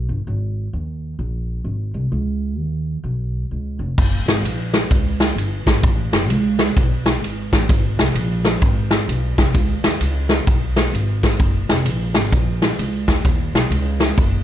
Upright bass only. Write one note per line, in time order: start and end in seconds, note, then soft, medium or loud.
0.09 0.23 G1 medium
0.27 0.66 G#1 medium
0.73 1.13 D#2 medium
1.19 1.59 A#1 medium
1.64 1.90 G#1 medium
1.94 2.09 C2 medium
2.12 2.57 C#2 medium
2.57 2.98 D#2 medium
3.04 3.44 B1 medium
3.51 3.77 C#2 medium
3.79 3.94 F1 medium
3.98 4.23 F#1 loud
4.26 4.41 G#1 medium
4.42 4.83 A#1 medium
4.91 5.30 C#2 medium
5.35 5.61 G1 medium
5.66 5.81 G#1 medium
5.83 6.08 A1 loud
6.12 6.29 F#1 loud
6.29 6.69 C#2 medium
6.77 7.22 B1 loud
7.22 7.47 G#1 loud
7.53 7.67 A1 medium
7.69 7.94 G#1 loud
7.97 8.12 C2 medium
8.14 8.54 A#1 loud
8.62 9.01 G#1 loud
9.08 9.33 B1 loud
9.38 9.52 C2 medium
9.54 9.79 C#2 loud
9.85 9.99 D#2 medium
10.01 10.40 C#2 medium
10.47 10.87 B1 medium
10.93 11.32 G#1 medium
11.40 11.65 F#1 loud
11.69 11.83 F1 medium
11.85 12.11 A#1 medium
12.15 12.30 G#1 medium
12.32 12.71 A#1 loud
12.78 13.04 C#2 medium
13.08 13.22 D2 medium
13.25 13.50 D#2 loud
13.53 13.68 B1 medium
13.70 14.10 C#2 loud
14.17 14.43 F#1 loud